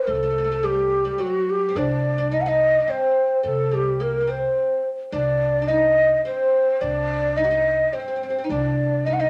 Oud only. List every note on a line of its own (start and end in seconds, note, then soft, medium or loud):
0.07 0.13 A3 medium
0.15 0.21 A3 medium
0.23 0.29 A3 medium
0.30 0.37 A3 medium
0.38 0.43 A3 medium
0.44 0.51 A3 medium
0.52 0.60 A3 medium
0.63 1.03 G3 medium
1.05 1.20 G3 medium
1.18 1.70 F#3 medium
1.69 1.76 C4 medium
1.76 2.17 D4 medium
2.18 2.31 D4 medium
2.31 2.45 D#4 medium
2.46 2.80 D#4 medium
2.80 2.87 D4 medium
2.87 3.46 C4 medium
3.43 3.71 A3 medium
3.71 4.00 G3 medium
4.00 4.19 A#3 medium
4.21 4.28 A#3 soft
4.27 4.80 C4 medium
5.12 5.61 D4 medium
5.62 5.68 D4 medium
5.68 6.21 D#4 medium
6.25 6.81 C4 medium
6.81 7.37 D4 medium
7.37 7.43 D#4 medium
7.44 7.50 F#4 medium
7.51 7.93 D#4 medium
7.93 7.98 C4 medium
8.00 8.07 C4 medium
8.08 8.15 C4 medium
8.16 8.22 C4 medium
8.23 8.29 C4 medium
8.30 8.37 C4 medium
8.38 8.44 C4 medium
8.44 8.50 D#4 medium
8.50 9.06 D4 medium
9.06 9.18 D#4 medium
9.20 9.30 D#4 medium